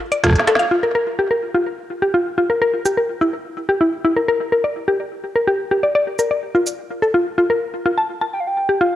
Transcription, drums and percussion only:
0.12 closed hi-hat
0.24 kick, cross-stick, snare, closed hi-hat, high bongo
0.26 kick, cross-stick
0.28 kick, cross-stick
0.31 kick, cross-stick
0.33 kick, cross-stick, closed hi-hat
0.38 cross-stick, snare
0.41 cross-stick
0.44 cross-stick, closed hi-hat, high bongo
0.55 snare, closed hi-hat
2.86 shaker
6.19 shaker
6.67 shaker

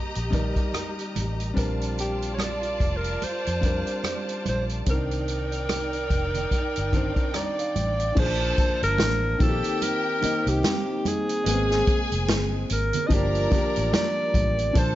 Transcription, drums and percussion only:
0.15 closed hi-hat
0.33 kick, closed hi-hat, muted conga, low conga
0.56 kick, closed hi-hat
0.74 cross-stick, closed hi-hat, high conga
0.99 closed hi-hat
1.16 closed hi-hat, high conga
1.40 closed hi-hat
1.57 kick, closed hi-hat, muted conga
1.81 closed hi-hat
1.98 closed hi-hat, muted conga
2.22 closed hi-hat
2.39 cross-stick, closed hi-hat, high conga
2.63 closed hi-hat
2.80 kick, closed hi-hat
3.04 closed hi-hat
3.22 closed hi-hat, muted conga
3.46 closed hi-hat
3.63 kick, closed hi-hat, muted conga
3.87 closed hi-hat
4.04 cross-stick, closed hi-hat, high conga
4.29 closed hi-hat
4.46 closed hi-hat, high conga
4.69 closed hi-hat
4.86 kick, closed hi-hat, muted conga
5.11 closed hi-hat
5.28 closed hi-hat
5.52 closed hi-hat
5.69 cross-stick, closed hi-hat, high conga
5.93 closed hi-hat
6.10 kick, closed hi-hat
6.34 cross-stick, closed hi-hat, low conga
6.51 kick, closed hi-hat, muted conga
6.76 closed hi-hat
6.93 kick, closed hi-hat, muted conga, low conga
7.16 kick, closed hi-hat
7.34 cross-stick, closed hi-hat, high conga
7.59 closed hi-hat
7.76 closed hi-hat, high conga
8.00 closed hi-hat
8.17 kick, crash, muted conga
8.58 kick, closed hi-hat, muted conga
8.83 closed hi-hat
8.98 snare, closed hi-hat, high conga
9.40 kick, closed hi-hat
9.64 closed hi-hat
9.82 closed hi-hat, muted conga
10.22 closed hi-hat, muted conga
10.47 closed hi-hat
10.63 snare, closed hi-hat, high conga
11.05 closed hi-hat, high conga
11.29 closed hi-hat
11.46 closed hi-hat, muted conga
11.71 snare
11.87 kick, closed hi-hat, muted conga
12.12 closed hi-hat
12.29 snare, closed hi-hat, high conga
12.70 closed hi-hat
12.93 closed hi-hat, low conga
13.10 kick, closed hi-hat, muted conga
13.35 closed hi-hat
13.52 kick, closed hi-hat, muted conga, low conga
13.76 closed hi-hat
13.93 snare, closed hi-hat, high conga
14.34 kick, closed hi-hat, high conga
14.59 closed hi-hat
14.75 kick, closed hi-hat, muted conga

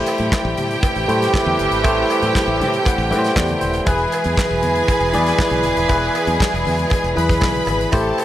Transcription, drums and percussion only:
0.06 closed hi-hat, cowbell, muted conga
0.18 closed hi-hat, high conga
0.32 kick, snare, clap, cowbell, muted conga
0.57 closed hi-hat, muted conga, high conga, low conga
0.71 closed hi-hat
0.83 kick, closed hi-hat, cowbell, muted conga
0.96 closed hi-hat
1.09 closed hi-hat, muted conga, high conga
1.22 snare, closed hi-hat
1.34 kick, snare, clap, cowbell, high conga
1.46 low conga
1.59 closed hi-hat, low conga
1.72 closed hi-hat
1.84 kick, closed hi-hat, cowbell, muted conga
2.10 closed hi-hat, cowbell
2.22 closed hi-hat, high conga
2.35 kick, snare, clap, cowbell, muted conga
2.61 closed hi-hat, high conga, low conga
2.73 closed hi-hat
2.85 kick, closed hi-hat, cowbell
2.99 closed hi-hat
3.11 closed hi-hat, high conga
3.24 snare, closed hi-hat
3.36 kick, snare, clap, cowbell, muted conga, high conga
3.48 closed hi-hat, low conga
3.61 closed hi-hat, low conga
3.73 closed hi-hat
3.86 kick, closed hi-hat, cowbell, muted conga
3.98 closed hi-hat
4.12 closed hi-hat, cowbell
4.24 closed hi-hat, high conga
4.37 kick, snare, clap, cowbell, muted conga
4.63 closed hi-hat, muted conga, high conga, low conga
4.75 closed hi-hat
4.88 kick, closed hi-hat, cowbell
5.00 closed hi-hat
5.13 closed hi-hat, high conga
5.26 snare, closed hi-hat
5.38 kick, snare, clap, cowbell, muted conga, high conga
5.50 closed hi-hat, low conga
5.63 closed hi-hat, low conga
5.77 closed hi-hat
5.89 kick, closed hi-hat, cowbell
6.15 closed hi-hat, cowbell
6.27 closed hi-hat, high conga
6.40 kick, snare, clap, cowbell, muted conga
6.55 closed hi-hat
6.65 open hi-hat, high conga, low conga
6.79 closed hi-hat
6.90 kick, closed hi-hat, cowbell, muted conga
7.04 closed hi-hat
7.16 closed hi-hat, high conga
7.29 kick, snare, closed hi-hat
7.41 kick, snare, clap, cowbell, muted conga, high conga
7.54 closed hi-hat, low conga
7.66 closed hi-hat, cowbell, low conga
7.81 closed hi-hat
7.92 kick, closed hi-hat, cowbell, muted conga
8.18 closed hi-hat, cowbell

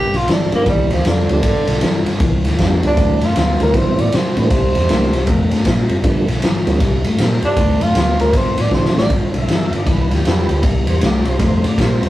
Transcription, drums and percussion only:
0.14 snare, ride
0.28 snare, ride
0.52 ride
0.66 kick, ride
0.91 snare, ride
1.05 snare, ride
1.29 ride
1.43 kick, ride
1.67 snare, ride
1.81 snare, ride
2.06 snare, ride
2.20 kick, ride
2.45 snare, ride
2.59 kick, snare, ride
2.83 ride
2.97 kick, ride
3.21 snare, ride
3.36 snare, ride
3.60 snare, ride
3.74 kick, snare, ride
3.98 ride
4.12 snare, ride
4.37 ride
4.51 kick, ride
4.75 snare, ride
4.89 snare, ride
5.13 snare, ride
5.27 kick, ride
5.51 snare, ride
5.65 kick, snare, ride
5.89 ride
6.04 kick, ride
6.28 snare, ride
6.42 snare, ride
6.67 snare, ride
6.80 kick, snare, ride
7.04 ride
7.18 snare, ride
7.42 ride
7.57 kick, ride
7.81 ride
7.95 snare, ride
8.20 snare, ride
8.33 kick, snare, ride
8.58 snare, ride
8.71 kick, snare
8.86 snare
8.98 snare
9.10 kick, ride
9.34 ride
9.48 snare, ride
9.73 ride
9.87 kick, snare, ride
10.11 snare, ride
10.25 snare, ride
10.49 ride
10.63 kick, ride
10.87 ride
11.01 snare, ride
11.25 ride
11.39 kick, snare, ride
11.64 ride
11.78 kick, snare, ride
12.03 ride

